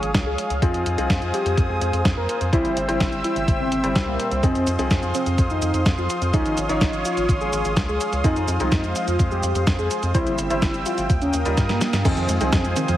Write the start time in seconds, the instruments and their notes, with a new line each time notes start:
Already playing: grand piano F3 C#4 D#4 C#5, analog synth lead G#4, analog synth pad C#5 F5 G#5 D#6
0.02 analog synth bass G#1, closed hi-hat
0.14 analog synth bass C#2, kick, snare, closed hi-hat
0.26 analog synth bass C#2, analog synth lead G#4
0.38 closed hi-hat
0.50 analog synth bass C#2, closed hi-hat
0.62 analog synth bass F2, grand piano F3 C4 D#4 G#4, analog synth lead F4, analog synth pad C5 G#5 D#6, kick, closed hi-hat
0.74 analog synth bass F2, closed hi-hat
0.86 analog synth bass F2, closed hi-hat
0.98 analog synth bass C2, grand piano F3 C4 D#4 G#4, analog synth lead F4, closed hi-hat
1.10 analog synth bass F2, kick, snare, closed hi-hat
1.22 analog synth bass F2, closed hi-hat
1.34 analog synth lead G4, closed hi-hat
1.46 analog synth bass F2, closed hi-hat
1.57 analog synth bass F2, kick, closed hi-hat
1.69 analog synth bass F2, analog synth lead G#4
1.81 analog synth bass F2, closed hi-hat
1.93 analog synth bass F2, closed hi-hat
2.05 analog synth bass F2, kick, snare, closed hi-hat
2.17 analog synth bass F2, analog synth lead A#4
2.29 closed hi-hat
2.41 analog synth bass F2, closed hi-hat
2.53 analog synth bass C2, grand piano G3 C4 E4 C5, analog synth lead E4, analog synth pad E5 G5 E6, kick, closed hi-hat
2.65 analog synth bass G1, closed hi-hat
2.76 analog synth bass G1, closed hi-hat
2.88 analog synth bass G1, grand piano G3 C4 E4 C5, analog synth lead E4, closed hi-hat
3.00 analog synth bass G1, kick, snare, closed hi-hat
3.12 analog synth bass G1, closed hi-hat
3.24 analog synth lead E4, closed hi-hat
3.36 analog synth bass G1, closed hi-hat
3.48 analog synth bass G1, kick, closed hi-hat
3.60 analog synth bass G1, analog synth lead C4
3.71 analog synth bass G1, closed hi-hat
3.83 analog synth bass G1, grand piano G3 C4 E4 C5, closed hi-hat
3.96 analog synth bass C2, kick, snare, closed hi-hat
4.07 analog synth bass C2, analog synth lead A#3
4.19 closed hi-hat
4.31 analog synth bass C2, closed hi-hat
4.43 analog synth bass F2, grand piano F3 C4 D#4 G#4, analog synth lead C4, analog synth pad F5 C6 D#6, kick, closed hi-hat, cabasa
4.55 analog synth bass F2, closed hi-hat, cabasa
4.67 analog synth bass F2, closed hi-hat, cabasa
4.78 analog synth bass C2, grand piano F3 C4 D#4 G#4, analog synth lead C4, closed hi-hat, cabasa
4.91 analog synth bass F2, kick, snare, closed hi-hat, cabasa
5.03 analog synth bass F2, closed hi-hat, cabasa
5.15 analog synth lead C4, closed hi-hat, cabasa
5.26 analog synth bass F2, closed hi-hat, cabasa
5.38 analog synth bass F2, kick, closed hi-hat, cabasa
5.50 analog synth bass F2, analog synth lead D#4, cabasa
5.62 analog synth bass F2, closed hi-hat, cabasa
5.74 analog synth bass F2, closed hi-hat, cabasa
5.86 analog synth bass F2, kick, snare, closed hi-hat, cabasa
5.98 analog synth bass F2, analog synth lead F4, cabasa
6.10 closed hi-hat, cabasa
6.21 analog synth bass F2, closed hi-hat, cabasa
6.33 analog synth bass C#2, grand piano F3 C#4 D#4 G#4, analog synth lead D#4, analog synth pad C#5, kick, closed hi-hat, cabasa
6.45 analog synth bass G#1, closed hi-hat, cabasa
6.57 analog synth bass G#1, closed hi-hat, cabasa
6.69 analog synth bass G#1, grand piano F3 C#4 D#4 C#5, analog synth lead D#4, closed hi-hat, cabasa
6.81 analog synth bass G#1, kick, snare, closed hi-hat, cabasa
6.93 analog synth bass G#1, closed hi-hat, cabasa
7.05 analog synth lead F4, closed hi-hat, cabasa
7.17 analog synth bass G#1, closed hi-hat, cabasa
7.29 analog synth bass G#1, kick, closed hi-hat, cabasa
7.41 analog synth bass G#1, analog synth lead G#4, cabasa
7.53 analog synth bass G#1, closed hi-hat, cabasa
7.65 analog synth bass G#1, closed hi-hat, cabasa
7.76 analog synth bass C#2, kick, snare, closed hi-hat, cabasa
7.89 analog synth bass C#2, analog synth lead G#4, cabasa
8.01 closed hi-hat, cabasa
8.13 analog synth bass C#2, closed hi-hat, cabasa
8.24 analog synth bass F2, grand piano F3 C4 D#4 G#4, analog synth lead D#4, analog synth pad C5, kick, closed hi-hat, cabasa
8.36 analog synth bass F2, closed hi-hat, cabasa
8.48 analog synth bass F2, closed hi-hat, cabasa
8.60 analog synth bass C2, grand piano F3 G#3 C4 D#4, analog synth lead D#4, closed hi-hat, cabasa
8.72 analog synth bass F2, kick, snare, closed hi-hat, cabasa
8.84 analog synth bass F2, closed hi-hat, cabasa
8.96 analog synth lead F4, closed hi-hat, cabasa
9.08 analog synth bass F2, closed hi-hat, cabasa
9.19 analog synth bass F2, kick, closed hi-hat, cabasa
9.31 analog synth bass F2, analog synth lead G4, cabasa
9.43 analog synth bass F2, closed hi-hat, cabasa
9.55 analog synth bass F2, closed hi-hat, cabasa
9.67 analog synth bass F2, kick, snare, closed hi-hat, cabasa
9.79 analog synth bass F2, analog synth lead G#4, cabasa
9.91 closed hi-hat, cabasa
10.03 analog synth bass F2, closed hi-hat, cabasa
10.14 analog synth bass C2, grand piano G3 C4 E4 C5, analog synth lead E4, analog synth pad E5 G5 E6, kick, closed hi-hat, cabasa
10.27 analog synth bass G1, closed hi-hat, cabasa
10.38 analog synth bass G1, closed hi-hat, cabasa
10.50 analog synth bass G1, grand piano G3 C4 E4 C5, analog synth lead E4, closed hi-hat, cabasa
10.62 analog synth bass G1, kick, snare, closed hi-hat, cabasa
10.74 analog synth bass G1, closed hi-hat, cabasa
10.86 analog synth lead F4, closed hi-hat, cabasa
10.98 analog synth bass G1, closed hi-hat, cabasa
11.10 analog synth bass D#2, analog synth pad A#4 F5 D#6, kick, closed hi-hat, cabasa
11.22 analog synth bass D#2, analog synth lead C#4, closed hi-hat, cabasa
11.33 analog synth bass D#2, closed hi-hat, cabasa
11.45 analog synth bass D#2, grand piano G3 D#4 F4 A#4, closed hi-hat, cabasa
11.57 analog synth bass G2, kick, snare, closed hi-hat, cabasa
11.69 analog synth bass G2, analog synth lead A#3, snare, closed hi-hat, cabasa
11.81 snare, closed hi-hat, cabasa
11.93 analog synth bass G2, snare, closed hi-hat, cabasa
12.05 analog synth bass F2, synth arpeggio sound D#3, grand piano F3 C4 D#4 G#4, analog synth lead C4, analog synth pad C5 F5 G#5 D#6, kick, closed hi-hat, crash, cabasa
12.17 analog synth bass F2, synth arpeggio sound F3, closed hi-hat, cabasa
12.29 analog synth bass F2, synth arpeggio sound G#3, closed hi-hat, cabasa
12.41 analog synth bass C2, synth arpeggio sound D#3, grand piano F3 C4 D#4 G#4, analog synth lead C4, closed hi-hat, cabasa
12.53 analog synth bass F2, synth arpeggio sound F3, kick, snare, closed hi-hat, cabasa
12.65 analog synth bass F2, synth arpeggio sound G#3, closed hi-hat, cabasa
12.76 synth arpeggio sound D#3, analog synth lead C4, closed hi-hat, cabasa
12.88 analog synth bass F2, synth arpeggio sound F3, closed hi-hat, cabasa